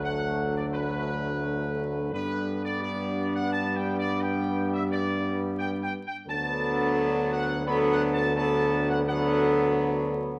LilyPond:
<<
  \new Staff \with { instrumentName = "Trumpet section" } { \time 3/4 \key d \major \tempo 4 = 86 fis''8. d''16 b'2 | b'8. d''16 d''8. fis''16 \tuplet 3/2 { a''8 g''8 d''8 } | g''8. e''16 d''4 \tuplet 3/2 { g''8 g''8 g''8 } | a''4. fis''8 \tuplet 3/2 { b''8 fis''8 a''8 } |
a''8. fis''16 fis''4 r4 | }
  \new Staff \with { instrumentName = "French horn section" } { \time 3/4 \key d \major << { a'2.~ | a'4 g'2~ | g'2. | a'2 a'4 |
a'4 a'2 | } \\ { d'2. | d'2.~ | d'2. | d'2 d'4 |
d'4 d'2 | } >> }
  \new Staff \with { instrumentName = "Trombone section" } { \clef bass \time 3/4 \key d \major <fis a>2. | <g b>2.~ | <g b>2. | <fis b>2 <fis b>4 |
<fis b>4 <fis b>2 | }
  \new Staff \with { instrumentName = "Tuba" } { \clef bass \time 3/4 \key d \major d,2. | g,2.~ | g,2. | d,2.~ |
d,2. | }
>>